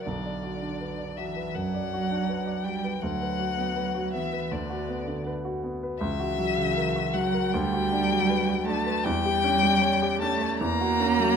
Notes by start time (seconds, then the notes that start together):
0.05 B1 D3 D5
0.25 D5
0.43 F#4
0.61 D4
0.81 B4
0.98 D5
1.17 E3 F#4 E5
1.36 B4
1.55 F#2 F#3 F#5
1.75 D5
1.94 F#4
2.11 D4
2.29 B4
2.47 D5
2.64 G3 F#4 G5
2.84 B4
3.00 D2 F#3 F#5
3.21 B4
3.39 F#4
3.58 B3
3.76 B4
3.95 F#4
4.13 E3 B3 E5
4.33 B4
4.51 D2 D3 D5
4.70 F#4
4.89 B3
5.07 D3
5.27 B4
5.45 F#4
5.63 B3
5.83 B4
5.99 C#2 E3 E5
6.20 F#4
6.38 F#3
6.57 C#3
6.77 A#4
6.96 F#4
7.13 F#3 F#5
7.34 A#4
7.52 D2 G3 G5
7.73 F#4
7.92 D4
8.10 F#3
8.30 B4
8.48 F#4
8.65 A3 D4 A5
8.86 B4
9.04 E2 G3 G5
9.25 G4
9.44 C#4
9.63 G3
9.82 C#5
10.02 G4
10.20 A3 C#4 A5
10.42 C#5
10.60 E2 A#3 A#5
10.81 F#4
11.00 C#4
11.20 F#3